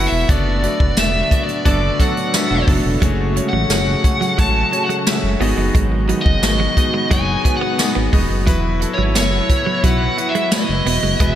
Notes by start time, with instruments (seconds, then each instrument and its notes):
Already playing: analog synth pad F#3 B3 E4, grand piano E4 F#4 A4 B4
0.07 lead electric guitar E5
0.12 analog synth bass E1
0.29 analog synth bass F#1, analog synth pad D3 F#3 A3 F#4, grand piano B3 D4 F#4 A4 D5, lead electric guitar D5, kick, closed hi-hat
0.63 grand piano B3 D4 F#4 A4 D5, closed hi-hat
0.80 analog synth bass F#1, kick
0.97 analog synth bass E1, grand piano B3 D4 F#4 A4 D5, lead electric guitar E5, snare, closed hi-hat, tambourine
1.31 grand piano B3 D4 F#4 A4 D5, kick, closed hi-hat
1.43 lead electric guitar D5
1.48 closed hi-hat
1.65 analog synth bass F#1, analog polysynth F#3 D4 A4, grand piano B3 D4 F#4 A4 D5, lead electric guitar D5, kick, closed hi-hat
1.99 analog polysynth F#3 D4 A4, grand piano B3 D4 F#4 A4 C#5, lead electric guitar F#5, kick, closed hi-hat
2.17 closed hi-hat
2.33 grand piano B3 D4 F#4 A4 E5, snare, closed hi-hat, tambourine
2.51 analog synth bass E1, analog polysynth F#3 D4 A4
2.67 analog synth bass F#1, analog polysynth F#3 D4 A4, grand piano B3 D4 F#4 A4 E5, kick, open hi-hat
2.85 analog synth bass E1
3.01 analog synth bass F#1, analog synth pad C#3 G#3, clean electric guitar F#3, grand piano A3 C#4 F#4 G#4 C#5, kick, closed hi-hat
3.36 grand piano A3 C#4 F#4 G#4 C#5, muted clean electric guitar stroke, closed hi-hat
3.49 lead electric guitar F#5
3.53 analog synth bass A1, clean electric guitar F#3
3.70 analog synth bass F#1, grand piano A3 C#4 F#4 G#4 C#5, clean electric guitar A3, lead electric guitar F#5, snare, closed hi-hat, tambourine
4.04 grand piano A3 C#4 F#4 G#4 C#5, muted clean electric guitar stroke, kick, closed hi-hat
4.21 clean electric guitar F#3, closed hi-hat
4.38 analog synth bass A1, clean electric guitar F#3, grand piano A3 C#4 F#4 G#4 C#5, lead electric guitar A5, kick, closed hi-hat
4.72 grand piano A3 C#4 F#4 G#4 C#5, muted clean electric guitar stroke, closed hi-hat
4.84 lead electric guitar F#5
4.89 clean electric guitar G#3, closed hi-hat
5.06 grand piano A3 C#4 F#4 G#4 E5, muted clean electric guitar stroke, snare, closed hi-hat, tambourine
5.23 analog synth bass F#1
5.40 analog synth bass G#1, analog synth pad D#3 B3, grand piano B3 D#4 F#4 G#4 D#5, clean electric guitar B3, open hi-hat
5.58 analog synth bass F#1, clean electric guitar G#3
5.75 analog synth bass G#1, clean electric guitar G#3, kick, closed hi-hat
5.92 muted clean electric guitar stroke
6.08 clean electric guitar F#3, grand piano B3 D#4 F#4 G#4 D#5, closed hi-hat
6.21 lead electric guitar D#5
6.26 analog synth bass F#1, kick
6.42 analog synth bass G#1, grand piano B3 D#4 F#4 G#4 D#5, lead electric guitar D#5, snare, closed hi-hat, tambourine
6.60 clean electric guitar F#3
6.76 grand piano B3 D#4 F#4 G#4 D#5, muted clean electric guitar stroke, kick, closed hi-hat
6.94 clean electric guitar G#3
7.10 analog synth bass F#1, clean electric guitar G#3, grand piano B3 D#4 F#4 G#4 C#5, lead electric guitar G#5, kick, closed hi-hat
7.44 grand piano B3 D#4 F#4 G#4 B4, muted clean electric guitar stroke, kick, closed hi-hat
7.57 lead electric guitar F#5
7.61 clean electric guitar B3
7.79 grand piano B3 D#4 F#4 G#4 D#5, muted clean electric guitar stroke, snare, closed hi-hat, tambourine
7.95 analog synth bass G#1, clean electric guitar B3
8.13 analog synth bass E1, clean electric guitar G#3, grand piano B3 D#4 F#4 G#4 D#5, kick, open hi-hat
8.30 analog synth bass F#1
8.46 analog synth bass E1, clean electric guitar F#3, grand piano E4 F#4 B4, analog synth pad E4, kick, closed hi-hat
8.81 grand piano E4 F#4 A4, muted clean electric guitar stroke, closed hi-hat
8.94 lead electric guitar C#5
8.98 analog synth bass G#1, clean electric guitar F#3
9.15 analog synth bass F#1, clean electric guitar B3, grand piano E4 F#4 A4, lead electric guitar C#5, snare, closed hi-hat, tambourine
9.49 grand piano E4 F#4 B4, muted clean electric guitar stroke, kick, closed hi-hat
9.66 clean electric guitar F#3
9.83 analog synth bass B1, clean electric guitar F#3, grand piano E4 F#4 B4, lead electric guitar F#5, kick, closed hi-hat
10.17 grand piano E4 F#4 B4, muted clean electric guitar stroke, closed hi-hat
10.30 lead electric guitar E5
10.35 clean electric guitar G#3, closed hi-hat
10.51 grand piano E4 F#4 B4, lead electric guitar D#5, muted clean electric guitar stroke, snare, closed hi-hat, tambourine
10.69 analog synth bass F#1
10.86 analog synth bass E1, clean electric guitar B3, grand piano E4 F#4 B4, open hi-hat
11.03 analog synth bass F#1, clean electric guitar G#3
11.20 analog synth bass E1, analog synth pad E3 G#3 F#4, grand piano G#3 B3 E4 F#4 B4, clean electric guitar G#3, lead electric guitar E5, kick, closed hi-hat